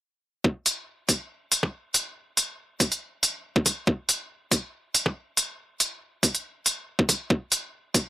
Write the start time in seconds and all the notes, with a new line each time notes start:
0.44 kick
0.66 closed hi-hat
1.09 kick, closed hi-hat
1.52 closed hi-hat
1.63 kick
1.94 closed hi-hat
2.37 closed hi-hat
2.80 kick, closed hi-hat
2.92 closed hi-hat
3.23 closed hi-hat
3.56 kick
3.66 kick, closed hi-hat
3.87 kick
4.09 closed hi-hat
4.51 kick, closed hi-hat
4.95 closed hi-hat
5.06 kick
5.37 closed hi-hat
5.80 closed hi-hat
6.23 kick, closed hi-hat
6.35 closed hi-hat
6.66 closed hi-hat
6.99 kick
7.09 kick, closed hi-hat
7.30 kick
7.52 closed hi-hat
7.94 kick, closed hi-hat